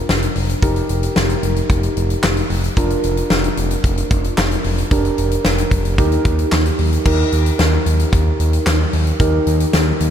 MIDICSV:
0, 0, Header, 1, 4, 480
1, 0, Start_track
1, 0, Tempo, 535714
1, 562, Time_signature, 4, 2, 24, 8
1, 9052, End_track
2, 0, Start_track
2, 0, Title_t, "Synth keys"
2, 0, Program_c, 0, 88
2, 0, Note_on_c, 0, 62, 74
2, 0, Note_on_c, 0, 65, 70
2, 0, Note_on_c, 0, 70, 82
2, 525, Note_off_c, 0, 62, 0
2, 525, Note_off_c, 0, 65, 0
2, 525, Note_off_c, 0, 70, 0
2, 560, Note_on_c, 0, 67, 71
2, 561, Note_on_c, 0, 63, 75
2, 561, Note_on_c, 0, 70, 86
2, 2445, Note_off_c, 0, 63, 0
2, 2445, Note_off_c, 0, 67, 0
2, 2445, Note_off_c, 0, 70, 0
2, 2482, Note_on_c, 0, 62, 77
2, 2482, Note_on_c, 0, 65, 69
2, 2482, Note_on_c, 0, 70, 83
2, 4366, Note_off_c, 0, 62, 0
2, 4366, Note_off_c, 0, 65, 0
2, 4366, Note_off_c, 0, 70, 0
2, 4402, Note_on_c, 0, 62, 76
2, 4402, Note_on_c, 0, 67, 71
2, 4402, Note_on_c, 0, 70, 87
2, 5343, Note_off_c, 0, 62, 0
2, 5343, Note_off_c, 0, 67, 0
2, 5343, Note_off_c, 0, 70, 0
2, 5362, Note_on_c, 0, 67, 75
2, 5363, Note_on_c, 0, 63, 79
2, 5363, Note_on_c, 0, 70, 88
2, 6303, Note_off_c, 0, 63, 0
2, 6303, Note_off_c, 0, 67, 0
2, 6303, Note_off_c, 0, 70, 0
2, 6322, Note_on_c, 0, 63, 77
2, 6322, Note_on_c, 0, 70, 82
2, 6323, Note_on_c, 0, 67, 67
2, 8206, Note_off_c, 0, 63, 0
2, 8206, Note_off_c, 0, 67, 0
2, 8206, Note_off_c, 0, 70, 0
2, 8242, Note_on_c, 0, 67, 72
2, 8242, Note_on_c, 0, 70, 82
2, 8243, Note_on_c, 0, 63, 79
2, 9052, Note_off_c, 0, 63, 0
2, 9052, Note_off_c, 0, 67, 0
2, 9052, Note_off_c, 0, 70, 0
2, 9052, End_track
3, 0, Start_track
3, 0, Title_t, "Analog synth bass"
3, 0, Program_c, 1, 38
3, 80, Note_on_c, 1, 29, 101
3, 249, Note_off_c, 1, 29, 0
3, 321, Note_on_c, 1, 29, 98
3, 489, Note_off_c, 1, 29, 0
3, 560, Note_on_c, 1, 29, 106
3, 729, Note_off_c, 1, 29, 0
3, 801, Note_on_c, 1, 29, 96
3, 969, Note_off_c, 1, 29, 0
3, 1041, Note_on_c, 1, 29, 107
3, 1209, Note_off_c, 1, 29, 0
3, 1281, Note_on_c, 1, 29, 93
3, 1449, Note_off_c, 1, 29, 0
3, 1521, Note_on_c, 1, 29, 104
3, 1689, Note_off_c, 1, 29, 0
3, 1761, Note_on_c, 1, 29, 102
3, 1929, Note_off_c, 1, 29, 0
3, 2000, Note_on_c, 1, 29, 103
3, 2169, Note_off_c, 1, 29, 0
3, 2241, Note_on_c, 1, 29, 106
3, 2409, Note_off_c, 1, 29, 0
3, 2481, Note_on_c, 1, 29, 104
3, 2649, Note_off_c, 1, 29, 0
3, 2722, Note_on_c, 1, 29, 105
3, 2890, Note_off_c, 1, 29, 0
3, 2961, Note_on_c, 1, 29, 107
3, 3129, Note_off_c, 1, 29, 0
3, 3202, Note_on_c, 1, 29, 107
3, 3370, Note_off_c, 1, 29, 0
3, 3440, Note_on_c, 1, 29, 114
3, 3609, Note_off_c, 1, 29, 0
3, 3681, Note_on_c, 1, 29, 98
3, 3849, Note_off_c, 1, 29, 0
3, 3922, Note_on_c, 1, 29, 97
3, 4090, Note_off_c, 1, 29, 0
3, 4162, Note_on_c, 1, 29, 98
3, 4330, Note_off_c, 1, 29, 0
3, 4402, Note_on_c, 1, 29, 111
3, 4570, Note_off_c, 1, 29, 0
3, 4643, Note_on_c, 1, 29, 103
3, 4810, Note_off_c, 1, 29, 0
3, 4883, Note_on_c, 1, 29, 100
3, 5051, Note_off_c, 1, 29, 0
3, 5120, Note_on_c, 1, 29, 104
3, 5360, Note_on_c, 1, 39, 112
3, 5374, Note_off_c, 1, 29, 0
3, 5529, Note_off_c, 1, 39, 0
3, 5601, Note_on_c, 1, 39, 106
3, 5770, Note_off_c, 1, 39, 0
3, 5843, Note_on_c, 1, 39, 102
3, 6010, Note_off_c, 1, 39, 0
3, 6083, Note_on_c, 1, 39, 101
3, 6250, Note_off_c, 1, 39, 0
3, 6322, Note_on_c, 1, 39, 106
3, 6490, Note_off_c, 1, 39, 0
3, 6562, Note_on_c, 1, 39, 101
3, 6730, Note_off_c, 1, 39, 0
3, 6803, Note_on_c, 1, 39, 104
3, 6970, Note_off_c, 1, 39, 0
3, 7043, Note_on_c, 1, 39, 102
3, 7211, Note_off_c, 1, 39, 0
3, 7282, Note_on_c, 1, 39, 110
3, 7450, Note_off_c, 1, 39, 0
3, 7524, Note_on_c, 1, 39, 101
3, 7691, Note_off_c, 1, 39, 0
3, 7763, Note_on_c, 1, 39, 107
3, 7931, Note_off_c, 1, 39, 0
3, 8004, Note_on_c, 1, 39, 92
3, 8171, Note_off_c, 1, 39, 0
3, 8243, Note_on_c, 1, 39, 107
3, 8410, Note_off_c, 1, 39, 0
3, 8482, Note_on_c, 1, 39, 103
3, 8650, Note_off_c, 1, 39, 0
3, 8722, Note_on_c, 1, 39, 99
3, 8890, Note_off_c, 1, 39, 0
3, 8962, Note_on_c, 1, 39, 98
3, 9052, Note_off_c, 1, 39, 0
3, 9052, End_track
4, 0, Start_track
4, 0, Title_t, "Drums"
4, 82, Note_on_c, 9, 38, 107
4, 172, Note_off_c, 9, 38, 0
4, 201, Note_on_c, 9, 42, 52
4, 291, Note_off_c, 9, 42, 0
4, 318, Note_on_c, 9, 46, 73
4, 408, Note_off_c, 9, 46, 0
4, 443, Note_on_c, 9, 42, 53
4, 532, Note_off_c, 9, 42, 0
4, 560, Note_on_c, 9, 36, 99
4, 560, Note_on_c, 9, 42, 82
4, 649, Note_off_c, 9, 42, 0
4, 650, Note_off_c, 9, 36, 0
4, 681, Note_on_c, 9, 42, 51
4, 770, Note_off_c, 9, 42, 0
4, 798, Note_on_c, 9, 42, 62
4, 888, Note_off_c, 9, 42, 0
4, 921, Note_on_c, 9, 42, 62
4, 1011, Note_off_c, 9, 42, 0
4, 1040, Note_on_c, 9, 38, 117
4, 1129, Note_off_c, 9, 38, 0
4, 1161, Note_on_c, 9, 42, 52
4, 1251, Note_off_c, 9, 42, 0
4, 1281, Note_on_c, 9, 42, 66
4, 1371, Note_off_c, 9, 42, 0
4, 1401, Note_on_c, 9, 42, 51
4, 1491, Note_off_c, 9, 42, 0
4, 1520, Note_on_c, 9, 36, 93
4, 1523, Note_on_c, 9, 42, 76
4, 1610, Note_off_c, 9, 36, 0
4, 1612, Note_off_c, 9, 42, 0
4, 1640, Note_on_c, 9, 42, 56
4, 1730, Note_off_c, 9, 42, 0
4, 1762, Note_on_c, 9, 42, 66
4, 1852, Note_off_c, 9, 42, 0
4, 1882, Note_on_c, 9, 42, 55
4, 1972, Note_off_c, 9, 42, 0
4, 2003, Note_on_c, 9, 38, 110
4, 2003, Note_on_c, 9, 39, 89
4, 2093, Note_off_c, 9, 38, 0
4, 2093, Note_off_c, 9, 39, 0
4, 2122, Note_on_c, 9, 42, 53
4, 2212, Note_off_c, 9, 42, 0
4, 2240, Note_on_c, 9, 46, 76
4, 2329, Note_off_c, 9, 46, 0
4, 2364, Note_on_c, 9, 42, 53
4, 2454, Note_off_c, 9, 42, 0
4, 2481, Note_on_c, 9, 36, 101
4, 2481, Note_on_c, 9, 42, 80
4, 2571, Note_off_c, 9, 36, 0
4, 2571, Note_off_c, 9, 42, 0
4, 2602, Note_on_c, 9, 42, 51
4, 2691, Note_off_c, 9, 42, 0
4, 2720, Note_on_c, 9, 42, 62
4, 2809, Note_off_c, 9, 42, 0
4, 2842, Note_on_c, 9, 42, 59
4, 2932, Note_off_c, 9, 42, 0
4, 2959, Note_on_c, 9, 38, 121
4, 3049, Note_off_c, 9, 38, 0
4, 3082, Note_on_c, 9, 42, 50
4, 3172, Note_off_c, 9, 42, 0
4, 3201, Note_on_c, 9, 42, 67
4, 3291, Note_off_c, 9, 42, 0
4, 3321, Note_on_c, 9, 42, 54
4, 3410, Note_off_c, 9, 42, 0
4, 3441, Note_on_c, 9, 36, 92
4, 3442, Note_on_c, 9, 42, 73
4, 3530, Note_off_c, 9, 36, 0
4, 3532, Note_off_c, 9, 42, 0
4, 3561, Note_on_c, 9, 42, 56
4, 3651, Note_off_c, 9, 42, 0
4, 3681, Note_on_c, 9, 36, 99
4, 3682, Note_on_c, 9, 42, 66
4, 3771, Note_off_c, 9, 36, 0
4, 3772, Note_off_c, 9, 42, 0
4, 3802, Note_on_c, 9, 42, 54
4, 3891, Note_off_c, 9, 42, 0
4, 3923, Note_on_c, 9, 38, 108
4, 3923, Note_on_c, 9, 39, 89
4, 4013, Note_off_c, 9, 38, 0
4, 4013, Note_off_c, 9, 39, 0
4, 4043, Note_on_c, 9, 42, 52
4, 4133, Note_off_c, 9, 42, 0
4, 4160, Note_on_c, 9, 46, 74
4, 4249, Note_off_c, 9, 46, 0
4, 4284, Note_on_c, 9, 42, 53
4, 4374, Note_off_c, 9, 42, 0
4, 4401, Note_on_c, 9, 36, 104
4, 4402, Note_on_c, 9, 42, 84
4, 4491, Note_off_c, 9, 36, 0
4, 4491, Note_off_c, 9, 42, 0
4, 4523, Note_on_c, 9, 42, 50
4, 4612, Note_off_c, 9, 42, 0
4, 4640, Note_on_c, 9, 42, 66
4, 4730, Note_off_c, 9, 42, 0
4, 4762, Note_on_c, 9, 42, 61
4, 4852, Note_off_c, 9, 42, 0
4, 4880, Note_on_c, 9, 38, 119
4, 4969, Note_off_c, 9, 38, 0
4, 5002, Note_on_c, 9, 42, 52
4, 5091, Note_off_c, 9, 42, 0
4, 5119, Note_on_c, 9, 36, 88
4, 5121, Note_on_c, 9, 42, 66
4, 5209, Note_off_c, 9, 36, 0
4, 5211, Note_off_c, 9, 42, 0
4, 5241, Note_on_c, 9, 42, 54
4, 5330, Note_off_c, 9, 42, 0
4, 5361, Note_on_c, 9, 36, 92
4, 5362, Note_on_c, 9, 42, 76
4, 5450, Note_off_c, 9, 36, 0
4, 5452, Note_off_c, 9, 42, 0
4, 5481, Note_on_c, 9, 42, 55
4, 5570, Note_off_c, 9, 42, 0
4, 5601, Note_on_c, 9, 36, 102
4, 5602, Note_on_c, 9, 42, 65
4, 5691, Note_off_c, 9, 36, 0
4, 5691, Note_off_c, 9, 42, 0
4, 5722, Note_on_c, 9, 42, 55
4, 5812, Note_off_c, 9, 42, 0
4, 5844, Note_on_c, 9, 38, 107
4, 5844, Note_on_c, 9, 39, 88
4, 5933, Note_off_c, 9, 38, 0
4, 5933, Note_off_c, 9, 39, 0
4, 5964, Note_on_c, 9, 42, 54
4, 6053, Note_off_c, 9, 42, 0
4, 6080, Note_on_c, 9, 46, 76
4, 6170, Note_off_c, 9, 46, 0
4, 6206, Note_on_c, 9, 42, 51
4, 6296, Note_off_c, 9, 42, 0
4, 6322, Note_on_c, 9, 36, 100
4, 6323, Note_on_c, 9, 49, 95
4, 6412, Note_off_c, 9, 36, 0
4, 6413, Note_off_c, 9, 49, 0
4, 6562, Note_on_c, 9, 42, 65
4, 6652, Note_off_c, 9, 42, 0
4, 6684, Note_on_c, 9, 42, 61
4, 6774, Note_off_c, 9, 42, 0
4, 6802, Note_on_c, 9, 38, 121
4, 6803, Note_on_c, 9, 42, 66
4, 6892, Note_off_c, 9, 38, 0
4, 6892, Note_off_c, 9, 42, 0
4, 7044, Note_on_c, 9, 42, 70
4, 7134, Note_off_c, 9, 42, 0
4, 7164, Note_on_c, 9, 42, 53
4, 7253, Note_off_c, 9, 42, 0
4, 7282, Note_on_c, 9, 36, 94
4, 7284, Note_on_c, 9, 42, 76
4, 7371, Note_off_c, 9, 36, 0
4, 7374, Note_off_c, 9, 42, 0
4, 7525, Note_on_c, 9, 42, 65
4, 7614, Note_off_c, 9, 42, 0
4, 7644, Note_on_c, 9, 42, 56
4, 7733, Note_off_c, 9, 42, 0
4, 7762, Note_on_c, 9, 42, 72
4, 7765, Note_on_c, 9, 38, 110
4, 7765, Note_on_c, 9, 39, 90
4, 7851, Note_off_c, 9, 42, 0
4, 7855, Note_off_c, 9, 38, 0
4, 7855, Note_off_c, 9, 39, 0
4, 8001, Note_on_c, 9, 46, 77
4, 8091, Note_off_c, 9, 46, 0
4, 8126, Note_on_c, 9, 42, 54
4, 8215, Note_off_c, 9, 42, 0
4, 8242, Note_on_c, 9, 36, 102
4, 8243, Note_on_c, 9, 42, 85
4, 8332, Note_off_c, 9, 36, 0
4, 8333, Note_off_c, 9, 42, 0
4, 8482, Note_on_c, 9, 42, 66
4, 8572, Note_off_c, 9, 42, 0
4, 8604, Note_on_c, 9, 42, 60
4, 8693, Note_off_c, 9, 42, 0
4, 8721, Note_on_c, 9, 38, 117
4, 8722, Note_on_c, 9, 42, 65
4, 8811, Note_off_c, 9, 38, 0
4, 8812, Note_off_c, 9, 42, 0
4, 8964, Note_on_c, 9, 42, 67
4, 9052, Note_off_c, 9, 42, 0
4, 9052, End_track
0, 0, End_of_file